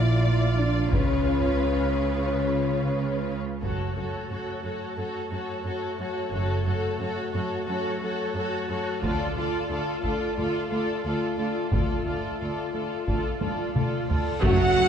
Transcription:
Already playing: A#1 A#2 E4 F4 D5
0.59 D4
0.92 C#2 C#3 C#4 B4 C#5, taiko
3.62 F#1 F#2 A3 F#4 A4 C#5, taiko
3.96 F#2 F#4 A4 C#5
4.30 F#2 F#4 A4 C#5
4.64 F#2 F#4 A4 C#5
4.97 F#2 F#4 A4 C#5
5.31 F#2 F#4 A4 C#5
5.64 F#2 F#4 A4 C#5
5.98 F#2 F#4 A4 C#5
6.32 F#1 F#2 F#4 A4 C#5
6.66 F#2 F#4 A4 C#5
6.99 F#2 F#4 A4 C#5
7.33 F#2 F#4 A4 C#5
7.67 F#2 F#4 A4 C#5
8.00 F#2 F#4 A4 C#5
8.34 F#2 F#4 A4 C#5
8.68 F#2 F#4 A4 C#5
9.02 D2 A3 F4 A4 D5, taiko
9.36 D2 F4 A4 D5
9.69 D2 F4 A4 D5
10.02 D2 F4 A4 D5, taiko
10.37 D2 F4 A4 D5
10.70 D2 F4 A4 D5
11.04 D2 F4 A4 D5
11.37 D2 F4 A4 D5
11.72 D2 F4 A4 D5, taiko, reverse cymbal
12.05 D2 F4 A4 D5
12.39 D2 F4 A4 D5
12.73 D2 F4 A4 D5
13.07 D2 F4 A4 D5, taiko
13.41 D2 F4 A4 D5, taiko high
13.74 D2 F4 A4 D5, taiko mid
14.08 D2 F4 A4 D5, taiko low
14.42 F#1 F#2 F#3 A3 C#4 F#4 C#5 F#5, taiko, sub drop
14.76 F#1 F#2 F#3 A3

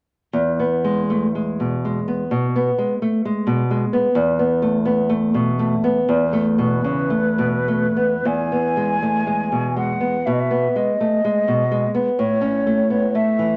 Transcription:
0.33 E2
0.59 B3
0.84 G#3
1.10 A3
1.35 G#3
1.60 B2
1.85 G#3
2.08 B3
2.31 B2
2.56 B3
2.78 G#3
3.02 A3
3.25 G#3
3.47 B2
3.71 G#3
3.93 B3
4.15 E2
4.39 B3
4.62 A3
4.85 B3
5.09 A3
5.34 B2
5.59 A3
5.84 B3
6.09 E2
6.33 A3
6.58 B2 B4
6.84 C#3
7.10 A3
7.38 B2
7.68 A3
7.96 B3
8.25 E2 G#5
8.52 B3
8.77 G#3
9.03 A3
9.27 G#3
9.52 B2
9.76 G#3 F#5
10.00 B3
10.26 B2 E5
10.33 D#5
10.40 E5
10.51 B3
10.76 G#3 D#5
11.01 A3
11.25 G#3
11.48 B2
11.71 G#3
11.95 B3
12.18 A2 C#5
12.41 C#4
12.67 A3
12.90 B3
13.15 A3 E5
13.39 E3

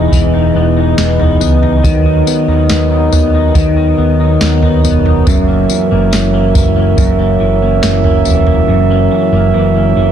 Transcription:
Already playing: E3 B3 D#4 G#4 D#5
0.12 E1 E3, kick, floor tom, tambourine
0.34 D#4
0.55 E1 B3
0.76 D#4
0.98 E1 B3, snare, tambourine
1.19 D#4, floor tom
1.40 C#2 B3, floor tom, tambourine
1.62 D#4, floor tom
1.83 D#2 D#3 F#3 A#4, kick, floor tom, tambourine
2.05 D#4
2.27 B3, tambourine
2.48 D#2 D#4
2.69 D#2 B3, snare, tambourine
2.90 D#4
3.12 D#2 B3, floor tom, tambourine
3.34 D#4
3.55 D#2 D#3, kick, floor tom, tambourine
3.77 D#4
3.98 D#2 B3
4.20 D#4
4.41 D#2 B3, snare, tambourine
4.62 D#4, floor tom
4.84 E1 B3, floor tom, tambourine
5.05 D#4, floor tom
5.26 F#1 F#2 C#4 E5, kick, floor tom, tambourine
5.48 A#3
5.70 E3, tambourine
5.91 F#1 A#3
6.12 F#1 E3, snare, tambourine
6.33 A#3
6.54 F#1 E3, kick, floor tom, tambourine
6.76 A#3
6.97 F#1 F#2, kick, floor tom, tambourine
7.19 A#3
7.40 F#1 E3
7.62 A#3
7.83 F#1 E3, snare, tambourine
8.04 A#3, floor tom
8.25 E1 E3, floor tom, tambourine
8.47 A#3, floor tom
8.68 F#1 F#2
8.90 A#3
9.11 E3
9.32 F#1 A#3
9.54 F#1 E3
9.75 A#3
9.97 F#1 E3

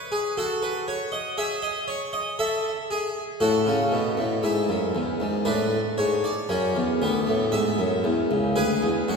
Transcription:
Already playing: B4
0.12 G#4
0.37 F#4 A4
0.63 B4
0.88 C#5
1.12 D#5
1.38 G#4 E5
1.62 D#5
1.88 C#5
2.13 D#5
2.39 A4 E5
2.91 G#4
3.40 A2 F#4 A4
3.66 C#3
3.92 B2
4.17 A2
4.43 G#2 E4
4.69 F#2
4.95 E2
5.20 G#2
5.45 A2 D4 B4
5.98 G#2 C#5
6.24 D5
6.49 F#2 C#4
6.75 E2
7.02 D2 B3
7.28 A2
7.52 G#2 E5
7.79 F#2
8.04 E2
8.31 C#2
8.56 D2 G#4 B4
8.82 E2
9.08 F#2 F#4

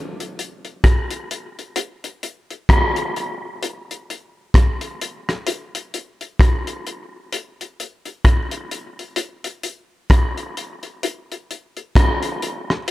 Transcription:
0.20 closed hi-hat
0.39 closed hi-hat
0.65 closed hi-hat
0.84 kick, cross-stick, closed hi-hat
1.10 closed hi-hat
1.31 closed hi-hat
1.59 closed hi-hat
1.76 closed hi-hat
2.04 closed hi-hat
2.23 closed hi-hat
2.51 closed hi-hat
2.69 kick, cross-stick, closed hi-hat
2.96 closed hi-hat
3.16 closed hi-hat
3.63 closed hi-hat
3.91 closed hi-hat
4.10 closed hi-hat
4.54 kick, cross-stick, closed hi-hat
4.81 closed hi-hat
5.01 closed hi-hat
5.29 cross-stick, closed hi-hat
5.47 closed hi-hat
5.75 closed hi-hat
5.94 closed hi-hat
6.21 closed hi-hat
6.39 kick, cross-stick, closed hi-hat
6.67 closed hi-hat
6.87 closed hi-hat
7.33 closed hi-hat
7.61 closed hi-hat
7.80 closed hi-hat
8.05 closed hi-hat
8.25 kick, cross-stick, closed hi-hat
8.51 closed hi-hat
8.71 closed hi-hat
8.99 closed hi-hat
9.16 closed hi-hat
9.44 closed hi-hat
9.63 closed hi-hat
10.10 kick, cross-stick, closed hi-hat
10.38 closed hi-hat
10.57 closed hi-hat
10.83 closed hi-hat
11.03 closed hi-hat
11.32 closed hi-hat
11.51 closed hi-hat
11.77 closed hi-hat
11.95 kick, cross-stick, closed hi-hat
12.23 closed hi-hat
12.42 closed hi-hat
12.70 cross-stick

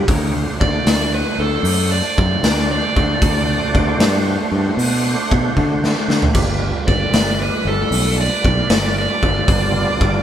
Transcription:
0.07 D2 A#3 D#4 G4 C#5, kick, open hi-hat
0.32 A3 D4 F#4 C5
0.60 D2 D5, kick
0.86 D2, snare, open hi-hat
1.14 B4
1.39 D2 A4
1.63 F#2, open hi-hat
1.92 D5
2.18 F#2, kick
2.43 D2, snare, open hi-hat
2.71 D5
2.96 D2, kick
3.19 D2 A3 D4 F#4 C5, kick, open hi-hat
3.75 D2, kick
3.99 G2, snare, open hi-hat
4.52 G2
4.77 B2, open hi-hat
5.31 B2, kick
5.57 D3, kick
5.84 snare
6.08 D3, snare
6.22 floor tom
6.33 G1 G3 D4 F4 B4, kick, crash
6.87 G1 D5, kick
7.12 G1, snare, open hi-hat
7.42 B4
7.65 G1 A4
7.91 B1, open hi-hat
8.21 D5
8.44 B1, kick
8.70 G1, snare, open hi-hat
8.98 D5
9.23 G1, kick
9.48 G1 G3 B3 D4 F4, kick, open hi-hat
10.01 G1, kick

